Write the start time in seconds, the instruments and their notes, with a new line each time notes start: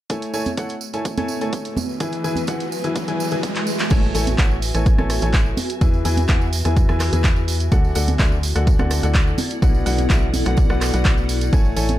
0.10 upright piano A3 E4 A4 C#5 G#5, kick, closed hi-hat, tambourine, riser
0.22 closed hi-hat, tambourine
0.33 upright piano A3 E4 A4 C#5 G#5, ambient pad F#4, tambourine
0.46 ambient pad E5, closed hi-hat, tambourine, high conga
0.57 upright piano A3 E4 A4 C#5 F#5, ambient pad B4, kick, closed hi-hat, tambourine
0.69 ambient pad G#5, closed hi-hat, tambourine
0.81 tambourine
0.93 upright piano A3 E4 A4 C#5 G#5, closed hi-hat, tambourine
1.05 kick, closed hi-hat, tambourine
1.17 upright piano A3 E4 A4 C#5 G#5, closed hi-hat, tambourine, high conga
1.28 tambourine
1.41 upright piano A3 E4 A4 C#5 G#5, closed hi-hat, tambourine
1.53 kick, closed hi-hat, tambourine
1.65 closed hi-hat, tambourine
1.77 tambourine, high conga
1.89 tambourine
2.00 upright piano E3 E4 G#4 B4 G#5, kick, closed hi-hat, tambourine
2.12 closed hi-hat, tambourine
2.24 upright piano E3 E4 G#4 B4 G#5, tambourine
2.36 closed hi-hat, tambourine, high conga
2.47 upright piano E3 E4 G#4 B4 F#5, kick, closed hi-hat, tambourine
2.60 closed hi-hat, tambourine
2.72 tambourine
2.84 upright piano E3 E4 G#4 B4 G#5, closed hi-hat, tambourine
2.96 kick, closed hi-hat, tambourine
3.08 upright piano E3 E4 G#4 B4 G#5, closed hi-hat, tambourine
3.20 tambourine
3.31 upright piano E3 E4 G#4 B4 G#5, closed hi-hat, tambourine
3.43 kick, closed hi-hat, tambourine
3.56 clap, closed hi-hat, tambourine
3.67 tambourine
3.79 clap, closed hi-hat, tambourine
3.90 fm bass A1, upright piano A3 E4 A4 C#5 G#5, kick, closed hi-hat, tambourine, crash
4.03 tambourine
4.15 fm bass A1, upright piano A3 E4 A4 C#5 G#5, open hi-hat, tambourine
4.27 closed hi-hat, tambourine, high conga
4.38 fm bass A1, upright piano A3 E4 A4 C#5 F#5, kick, clap, closed hi-hat, tambourine
4.51 tambourine
4.62 open hi-hat, tambourine
4.74 fm bass A1, upright piano A3 E4 A4 C#5 G#5, cross-stick, closed hi-hat, tambourine
4.86 kick, closed hi-hat, tambourine
4.98 fm bass A1, upright piano A3 E4 A4 C#5 G#5, cross-stick, tambourine, high conga
5.10 cross-stick, open hi-hat, tambourine
5.21 fm bass A1, upright piano A3 E4 A4 C#5 G#5, closed hi-hat, tambourine
5.33 kick, clap, closed hi-hat, tambourine
5.46 tambourine
5.57 open hi-hat, tambourine, high conga
5.70 closed hi-hat, tambourine
5.81 fm bass E2, upright piano E3 E4 G#4 B4 G#5, kick, closed hi-hat, tambourine
5.94 tambourine
6.05 fm bass E2, upright piano E3 E4 G#4 B4 G#5, open hi-hat, tambourine
6.17 closed hi-hat, tambourine, high conga
6.28 fm bass E2, upright piano E3 E4 G#4 B4 F#5, kick, clap, closed hi-hat, tambourine
6.41 tambourine
6.53 open hi-hat, tambourine
6.65 fm bass E2, upright piano E3 E4 G#4 B4 G#5, cross-stick, closed hi-hat, tambourine
6.76 kick, closed hi-hat, tambourine
6.89 fm bass E2, upright piano E3 E4 G#4 B4 G#5, cross-stick, tambourine
7.00 cross-stick, clap, open hi-hat, tambourine
7.13 fm bass E2, upright piano E3 E4 G#4 B4 G#5, closed hi-hat, tambourine
7.24 kick, clap, closed hi-hat, tambourine
7.36 tambourine
7.48 open hi-hat, tambourine
7.60 closed hi-hat, tambourine
7.72 fm bass D2, upright piano D3 D4 F#4 A4 F#5, ambient pad E4, kick, closed hi-hat, tambourine
7.79 ambient pad A4
7.84 tambourine
7.95 fm bass D2, upright piano D3 D4 F#4 A4 F#5, open hi-hat, tambourine
8.08 ambient pad D5, closed hi-hat, tambourine, high conga
8.19 fm bass D2, upright piano D3 D4 F#4 A4 E5, kick, clap, closed hi-hat, tambourine
8.32 tambourine
8.43 ambient pad F#5, open hi-hat, tambourine
8.55 fm bass D2, upright piano D3 D4 F#4 A4 F#5, cross-stick, closed hi-hat, tambourine
8.67 kick, closed hi-hat, tambourine
8.79 fm bass D2, upright piano D3 D4 F#4 A4 F#5, cross-stick, tambourine, high conga
8.91 cross-stick, open hi-hat, tambourine
9.03 fm bass D2, upright piano D3 D4 F#4 A4 F#5, closed hi-hat, tambourine
9.14 kick, clap, closed hi-hat, tambourine
9.27 tambourine
9.38 open hi-hat, tambourine, high conga
9.51 closed hi-hat, tambourine
9.62 fm bass B1, upright piano B2 D4 F#4 B4 F#5, kick, closed hi-hat, tambourine
9.75 tambourine
9.86 fm bass B1, upright piano B2 D4 F#4 B4 F#5, open hi-hat, tambourine
9.98 closed hi-hat, tambourine, high conga
10.10 fm bass B1, upright piano B2 D4 F#4 B4 E5, kick, clap, closed hi-hat, tambourine
10.33 open hi-hat, tambourine, high conga
10.46 fm bass B1, upright piano B2 D4 F#4 B4 F#5, cross-stick, closed hi-hat, tambourine
10.57 kick, closed hi-hat, tambourine
10.69 fm bass B1, upright piano B2 D4 F#4 B4 F#5, cross-stick, tambourine
10.81 cross-stick, clap, open hi-hat, tambourine
10.93 fm bass B1, upright piano B2 D4 F#4 B4 F#5, closed hi-hat, tambourine
11.05 kick, clap, closed hi-hat, tambourine
11.18 tambourine
11.29 open hi-hat, tambourine
11.41 closed hi-hat, tambourine
11.53 fm bass A1, upright piano A3 E4 A4 C#5 G#5, kick, closed hi-hat, tambourine
11.65 tambourine
11.76 fm bass A1, upright piano A3 E4 A4 C#5 G#5, open hi-hat, tambourine
11.89 closed hi-hat, tambourine, high conga